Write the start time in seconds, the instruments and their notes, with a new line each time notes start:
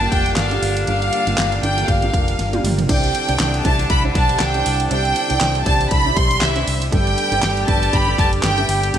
Already playing: upright piano G2 G4, french horn section D3 D4, tonewheel organ D3 G3 A#3 F4, violin section A5
0.00 upright piano A#3 D4 F4 G4
0.12 fingered electric bass F1, violin section G5, kick, ride
0.26 ride
0.36 fingered electric bass G1, violin section F5, snare, clap, ride
0.51 upright piano A#3 D4 F4 G4, ride
0.62 fingered electric bass G1, open hi-hat, ride
0.77 ride
0.87 fingered electric bass G1, upright piano G2 A#3 D4 F4 G4, tonewheel organ F4, violin section F5, ride
1.02 ride
1.13 ride
1.27 fingered electric bass G1, upright piano A#3 D4 F4 G4, ride
1.38 fingered electric bass G1, snare, clap, ride
1.52 ride
1.62 fingered electric bass G1, upright piano A#3 D4 F4 G4, violin section G5, ride
1.77 snare, ride
1.88 fingered electric bass G1, violin section F5, kick, ride
2.02 upright piano A#3 D4 F4 G4, ride
2.14 fingered electric bass F1, kick, ride
2.28 ride
2.39 fingered electric bass G1, snare, ride
2.52 upright piano A#3 D4 F4 G4, high tom, ride
2.64 fingered electric bass G1, mid tom, open hi-hat, ride
2.78 floor tom, ride
2.89 fingered electric bass C2, upright piano C3 D4 E4 G4 C5 D5, french horn section D3 D4, tonewheel organ D3 G3 C4 E4, violin section G5, kick, crash, ride
3.04 ride
3.15 ride
3.28 fingered electric bass C2, upright piano D4 E4 G4 C5 D5, ride
3.39 fingered electric bass C2, snare, clap, ride
3.54 ride
3.65 fingered electric bass C2, upright piano D4 E4 G4 C5 E5, violin section A5, kick, ride
3.79 snare, ride
3.90 fingered electric bass C2, violin section B5, kick, ride
4.04 upright piano D4 E4 G4 C5 D5
4.15 fingered electric bass B1, violin section A5, kick, ride
4.29 ride
4.40 fingered electric bass C2, violin section G5, snare, clap, ride
4.54 upright piano D4 E4 G4 C5 D5, ride
4.66 fingered electric bass C2, open hi-hat, ride
4.80 ride
4.91 fingered electric bass C2, upright piano C3 D4 E4 G4 C5 D5, violin section G5, ride
5.05 ride
5.16 ride
5.29 fingered electric bass C2, upright piano D4 E4 G4 C5 D5, ride
5.41 fingered electric bass C2, snare, clap, ride
5.55 ride
5.65 fingered electric bass C2, upright piano D4 E4 G4 C5 D5, violin section A5, kick, ride
5.80 snare, ride
5.91 fingered electric bass C2, violin section B5, kick, ride
6.05 upright piano D4 E4 G4 C5 E5
6.16 fingered electric bass B1, violin section C6, kick, ride
6.31 ride
6.41 fingered electric bass C2, french horn section E3 E4, violin section E5, snare, clap, ride
6.55 upright piano D4 E4 G4 C5 E5, ride
6.67 fingered electric bass C2, open hi-hat, ride
6.82 ride
6.92 fingered electric bass G1, upright piano G2 D4 G4 A4 B4 D5, french horn section G3 G4, tonewheel organ A3 B3 G4, violin section G5, kick, ride
7.07 ride
7.18 ride
7.31 fingered electric bass G1, upright piano D4 G4 A4 B4 D5, ride
7.43 fingered electric bass G1, snare, clap, ride
7.57 ride
7.67 fingered electric bass G1, upright piano D4 G4 A4 B4 D5, violin section A5, kick, ride
7.82 snare, ride
7.93 fingered electric bass G1, violin section B5, kick, ride
8.07 upright piano D4 G4 A4 B4 D5
8.18 fingered electric bass F#1, violin section A5, kick, ride
8.33 ride
8.43 fingered electric bass G1, violin section G5, snare, clap, ride
8.57 upright piano D4 G4 A4 B4 E5, ride
8.69 fingered electric bass G1, open hi-hat, ride
8.83 ride
8.93 fingered electric bass G1, upright piano G2 D4 G4 A4 B4 D5, ride